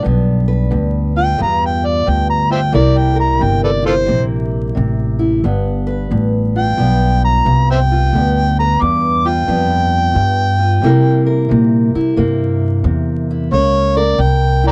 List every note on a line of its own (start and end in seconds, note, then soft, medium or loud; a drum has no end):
0.00 0.69 G2 medium
0.00 1.16 D4 medium
0.05 0.70 B1 medium
0.05 1.37 B3 medium
0.48 2.71 B4 medium
0.71 1.37 D2 medium
0.71 1.37 G2 medium
1.17 2.49 F4 medium
1.17 1.39 G5 loud
1.38 2.05 E2 medium
1.38 2.05 G2 medium
1.38 2.71 B3 medium
1.38 1.63 A#5 loud
1.66 1.87 G5 medium
1.86 2.11 D5 medium
2.06 2.73 D2 medium
2.06 2.74 G2 medium
2.06 2.30 G5 medium
2.30 2.51 A#5 medium
2.50 2.71 F4 medium
2.50 2.60 C5 medium
2.50 2.59 E5 medium
2.50 2.74 G5 medium
2.72 3.40 C2 medium
2.72 3.37 C3 medium
2.72 6.22 G3 medium
2.72 4.05 A#3 medium
2.72 3.81 E4 medium
2.72 3.14 A#4 medium
2.72 2.99 D5 medium
2.97 3.19 G5 medium
3.16 5.40 A#4 medium
3.20 3.44 A#5 medium
3.38 4.07 G1 medium
3.38 4.05 C3 medium
3.43 3.63 G5 loud
3.64 3.71 A4 medium
3.64 3.70 B4 medium
3.64 3.86 D5 medium
3.82 5.18 E4 medium
3.82 3.94 F4 medium
3.82 3.93 A4 medium
3.82 4.22 C5 loud
4.06 4.74 A#1 medium
4.06 4.74 C3 medium
4.06 5.43 A#3 medium
4.75 5.42 A1 medium
4.75 5.43 C3 medium
5.19 5.40 E4 medium
5.44 6.09 G1 medium
5.44 6.10 G2 medium
5.44 6.79 B3 medium
5.87 8.10 B4 medium
6.11 6.77 A1 medium
6.11 6.77 G2 medium
6.56 7.90 F4 medium
6.56 7.22 G5 medium
6.78 7.43 B1 medium
6.78 7.44 G2 medium
6.78 8.11 B3 medium
7.25 7.68 A#5 loud
7.45 8.11 C2 medium
7.45 8.13 G2 medium
7.71 7.80 C5 medium
7.71 7.78 E5 medium
7.71 8.57 G5 medium
7.92 8.11 F4 medium
8.13 8.78 D2 medium
8.13 8.80 G2 medium
8.13 9.48 B3 medium
8.59 10.81 B4 medium
8.59 8.83 A#5 medium
8.81 9.46 E2 medium
8.81 9.47 G2 medium
8.81 9.30 D6 medium
9.25 10.57 F4 medium
9.25 11.25 G5 loud
9.48 10.13 F2 medium
9.48 10.13 G2 medium
9.48 10.80 B3 medium
10.14 10.82 G2 medium
10.14 10.81 G2 medium
10.58 10.79 F4 medium
10.82 11.48 C3 medium
10.82 13.54 G3 medium
10.82 12.17 A#3 medium
10.82 11.95 E4 medium
10.86 11.26 A#4 medium
11.27 13.49 A#4 medium
11.49 11.91 A#2 medium
11.49 12.15 C3 medium
11.95 13.29 E4 medium
11.95 muted upright bass stroke soft
12.16 12.83 G2 medium
12.16 12.83 C3 medium
12.16 13.52 A#3 medium
12.84 13.49 E2 medium
12.84 13.51 C3 medium
13.31 13.50 E4 medium
13.51 14.17 C#2 medium
13.51 14.19 C#3 medium
13.51 14.72 A#3 medium
13.51 13.98 C#5 loud
13.97 14.72 A#4 medium
13.97 14.22 D5 medium
14.18 14.72 C2 medium
14.18 14.63 G5 loud
14.64 14.72 E4 medium
14.64 14.72 D5 medium
14.64 14.72 G5 medium
14.64 14.72 A#5 medium